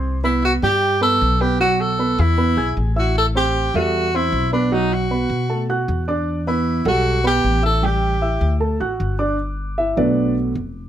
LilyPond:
<<
  \new Staff \with { instrumentName = "Grand piano" } { \time 4/4 \key g \major \tempo 4 = 154 <c' c'' c'''>8 <b b' b''>4 <g g' g''>4 <b b' b''>4 <b b' b''>8 | <fis fis' fis''>4 <b b' b''>4 <b b' b''>8 <gis' gis'' gis'''>4 <e' e'' e'''>8~ | <e' e'' e'''>8 <c' c'' c'''>4 <g a' e''>4 <c' c'' c'''>4 <b b' b''>8 | <fis fis' fis''>4 <b b' b''>4 <a a' a''>8 <fis' fis'' fis'''>4 <d' d'' d'''>8~ |
<d' d'' d'''>8 <b b' b''>4 <g a' fis''>4 <b b' b''>4 <e' e'' e'''>8 | <g g' g''>4 <e' e'' e'''>4 <a a' a''>8 <fis' fis'' fis'''>4 <d' d'' d'''>8 | r4 <e' e''>8 <d' a' b' d''>4 r4. | }
  \new Staff \with { instrumentName = "Grand piano" } { \time 4/4 \key g \major r1 | r1 | r1 | r1 |
r1 | r1 | r4. <fis a b>4. r4 | }
  \new Staff \with { instrumentName = "Tenor saxophone" } { \time 4/4 \key g \major r8 e'8 fis'8 g'4 a'4 g'8 | fis'8 a'4 e'4. r8 fis'8 | a'8 g'4 fis'4 e'4 d'8 | ees'8 fis'2 r4. |
r8 e'4 fis'4 g'4 a'8 | g'2 r2 | r1 | }
  \new Staff \with { instrumentName = "Upright bass" } { \clef bass \time 4/4 \key g \major c,4. g,4. b,,4~ | b,,4. e,4 b,,8 a,,4~ | a,,4. e,4. b,,4~ | b,,4. b,4. e,4~ |
e,4. b,,4. a,,4~ | a,,4. d,4 a,,8 g,,4~ | g,,4. b,,4. f,,4 | }
>>